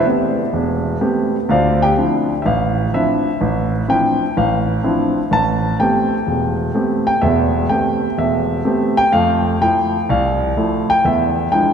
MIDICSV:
0, 0, Header, 1, 2, 480
1, 0, Start_track
1, 0, Key_signature, 0, "minor"
1, 0, Tempo, 477707
1, 1494, Time_signature, 4, 2, 24, 8
1, 11789, End_track
2, 0, Start_track
2, 0, Title_t, "Grand piano"
2, 0, Program_c, 0, 0
2, 60, Note_on_c, 0, 57, 42
2, 61, Note_on_c, 0, 59, 42
2, 67, Note_on_c, 0, 60, 44
2, 67, Note_on_c, 0, 67, 50
2, 401, Note_off_c, 0, 57, 0
2, 402, Note_off_c, 0, 59, 0
2, 404, Note_off_c, 0, 60, 0
2, 404, Note_off_c, 0, 67, 0
2, 534, Note_on_c, 0, 28, 67
2, 952, Note_off_c, 0, 28, 0
2, 1012, Note_on_c, 0, 57, 51
2, 1017, Note_on_c, 0, 59, 50
2, 1017, Note_on_c, 0, 60, 43
2, 1017, Note_on_c, 0, 67, 60
2, 1357, Note_off_c, 0, 57, 0
2, 1360, Note_off_c, 0, 59, 0
2, 1360, Note_off_c, 0, 60, 0
2, 1360, Note_off_c, 0, 67, 0
2, 1497, Note_on_c, 0, 38, 70
2, 1511, Note_on_c, 0, 77, 77
2, 1518, Note_on_c, 0, 72, 63
2, 1519, Note_on_c, 0, 74, 62
2, 1522, Note_on_c, 0, 65, 61
2, 1822, Note_off_c, 0, 77, 0
2, 1826, Note_off_c, 0, 72, 0
2, 1827, Note_off_c, 0, 74, 0
2, 1828, Note_off_c, 0, 65, 0
2, 1833, Note_on_c, 0, 79, 95
2, 1843, Note_on_c, 0, 67, 74
2, 1914, Note_off_c, 0, 38, 0
2, 1921, Note_off_c, 0, 79, 0
2, 1928, Note_off_c, 0, 67, 0
2, 1982, Note_on_c, 0, 53, 43
2, 1984, Note_on_c, 0, 60, 43
2, 1985, Note_on_c, 0, 62, 45
2, 1992, Note_on_c, 0, 64, 47
2, 2322, Note_off_c, 0, 53, 0
2, 2324, Note_off_c, 0, 60, 0
2, 2324, Note_off_c, 0, 62, 0
2, 2328, Note_off_c, 0, 64, 0
2, 2434, Note_on_c, 0, 76, 60
2, 2467, Note_on_c, 0, 33, 69
2, 2469, Note_off_c, 0, 76, 0
2, 2470, Note_on_c, 0, 77, 77
2, 2880, Note_off_c, 0, 33, 0
2, 2909, Note_off_c, 0, 77, 0
2, 2943, Note_on_c, 0, 53, 46
2, 2951, Note_on_c, 0, 60, 44
2, 2951, Note_on_c, 0, 62, 47
2, 2955, Note_on_c, 0, 64, 57
2, 2957, Note_on_c, 0, 76, 76
2, 3284, Note_off_c, 0, 53, 0
2, 3288, Note_off_c, 0, 60, 0
2, 3288, Note_off_c, 0, 62, 0
2, 3289, Note_off_c, 0, 64, 0
2, 3424, Note_on_c, 0, 33, 67
2, 3715, Note_off_c, 0, 76, 0
2, 3838, Note_off_c, 0, 33, 0
2, 3899, Note_on_c, 0, 60, 44
2, 3902, Note_on_c, 0, 53, 49
2, 3905, Note_on_c, 0, 62, 43
2, 3907, Note_on_c, 0, 64, 50
2, 3917, Note_on_c, 0, 79, 88
2, 4241, Note_off_c, 0, 60, 0
2, 4243, Note_off_c, 0, 53, 0
2, 4244, Note_off_c, 0, 62, 0
2, 4245, Note_off_c, 0, 64, 0
2, 4353, Note_off_c, 0, 79, 0
2, 4390, Note_on_c, 0, 33, 68
2, 4393, Note_on_c, 0, 77, 77
2, 4801, Note_off_c, 0, 33, 0
2, 4857, Note_on_c, 0, 53, 50
2, 4862, Note_on_c, 0, 60, 53
2, 4865, Note_on_c, 0, 62, 49
2, 4867, Note_on_c, 0, 64, 61
2, 5153, Note_off_c, 0, 77, 0
2, 5200, Note_off_c, 0, 53, 0
2, 5203, Note_off_c, 0, 60, 0
2, 5204, Note_off_c, 0, 62, 0
2, 5205, Note_off_c, 0, 64, 0
2, 5336, Note_on_c, 0, 33, 68
2, 5353, Note_on_c, 0, 81, 101
2, 5754, Note_off_c, 0, 33, 0
2, 5791, Note_off_c, 0, 81, 0
2, 5823, Note_on_c, 0, 57, 47
2, 5826, Note_on_c, 0, 79, 83
2, 5829, Note_on_c, 0, 60, 45
2, 5831, Note_on_c, 0, 59, 43
2, 5832, Note_on_c, 0, 67, 56
2, 6163, Note_off_c, 0, 57, 0
2, 6166, Note_off_c, 0, 60, 0
2, 6167, Note_off_c, 0, 59, 0
2, 6167, Note_off_c, 0, 67, 0
2, 6299, Note_on_c, 0, 28, 67
2, 6589, Note_off_c, 0, 79, 0
2, 6715, Note_off_c, 0, 28, 0
2, 6774, Note_on_c, 0, 57, 56
2, 6778, Note_on_c, 0, 59, 48
2, 6783, Note_on_c, 0, 60, 47
2, 6786, Note_on_c, 0, 67, 59
2, 7102, Note_on_c, 0, 79, 93
2, 7118, Note_off_c, 0, 57, 0
2, 7120, Note_off_c, 0, 59, 0
2, 7123, Note_off_c, 0, 60, 0
2, 7124, Note_off_c, 0, 67, 0
2, 7249, Note_off_c, 0, 79, 0
2, 7250, Note_on_c, 0, 76, 71
2, 7255, Note_on_c, 0, 28, 68
2, 7258, Note_on_c, 0, 40, 66
2, 7673, Note_off_c, 0, 28, 0
2, 7674, Note_off_c, 0, 40, 0
2, 7698, Note_off_c, 0, 76, 0
2, 7732, Note_on_c, 0, 79, 82
2, 7737, Note_on_c, 0, 57, 49
2, 7742, Note_on_c, 0, 59, 39
2, 7744, Note_on_c, 0, 60, 40
2, 7747, Note_on_c, 0, 67, 49
2, 8080, Note_off_c, 0, 57, 0
2, 8082, Note_off_c, 0, 59, 0
2, 8083, Note_off_c, 0, 60, 0
2, 8085, Note_off_c, 0, 67, 0
2, 8178, Note_off_c, 0, 79, 0
2, 8218, Note_on_c, 0, 28, 64
2, 8224, Note_on_c, 0, 76, 72
2, 8634, Note_off_c, 0, 28, 0
2, 8688, Note_on_c, 0, 59, 48
2, 8689, Note_on_c, 0, 57, 53
2, 8690, Note_on_c, 0, 60, 50
2, 8695, Note_on_c, 0, 67, 58
2, 8987, Note_off_c, 0, 76, 0
2, 9017, Note_on_c, 0, 79, 104
2, 9035, Note_off_c, 0, 57, 0
2, 9035, Note_off_c, 0, 59, 0
2, 9036, Note_off_c, 0, 60, 0
2, 9038, Note_off_c, 0, 67, 0
2, 9165, Note_off_c, 0, 79, 0
2, 9169, Note_on_c, 0, 77, 94
2, 9176, Note_on_c, 0, 41, 69
2, 9179, Note_on_c, 0, 57, 62
2, 9592, Note_off_c, 0, 41, 0
2, 9594, Note_off_c, 0, 57, 0
2, 9616, Note_off_c, 0, 77, 0
2, 9656, Note_on_c, 0, 53, 51
2, 9657, Note_on_c, 0, 57, 44
2, 9663, Note_on_c, 0, 64, 50
2, 9664, Note_on_c, 0, 79, 93
2, 9998, Note_off_c, 0, 53, 0
2, 9999, Note_off_c, 0, 57, 0
2, 10002, Note_off_c, 0, 64, 0
2, 10104, Note_off_c, 0, 79, 0
2, 10143, Note_on_c, 0, 36, 72
2, 10149, Note_on_c, 0, 77, 82
2, 10556, Note_off_c, 0, 36, 0
2, 10619, Note_on_c, 0, 53, 53
2, 10620, Note_on_c, 0, 57, 53
2, 10624, Note_on_c, 0, 64, 55
2, 10909, Note_off_c, 0, 77, 0
2, 10951, Note_on_c, 0, 79, 103
2, 10959, Note_off_c, 0, 53, 0
2, 10960, Note_off_c, 0, 57, 0
2, 10962, Note_off_c, 0, 64, 0
2, 11091, Note_off_c, 0, 79, 0
2, 11099, Note_on_c, 0, 40, 66
2, 11109, Note_on_c, 0, 76, 71
2, 11513, Note_off_c, 0, 40, 0
2, 11546, Note_off_c, 0, 76, 0
2, 11574, Note_on_c, 0, 79, 89
2, 11576, Note_on_c, 0, 56, 43
2, 11577, Note_on_c, 0, 62, 47
2, 11579, Note_on_c, 0, 53, 47
2, 11584, Note_on_c, 0, 64, 55
2, 11789, Note_off_c, 0, 53, 0
2, 11789, Note_off_c, 0, 56, 0
2, 11789, Note_off_c, 0, 62, 0
2, 11789, Note_off_c, 0, 64, 0
2, 11789, Note_off_c, 0, 79, 0
2, 11789, End_track
0, 0, End_of_file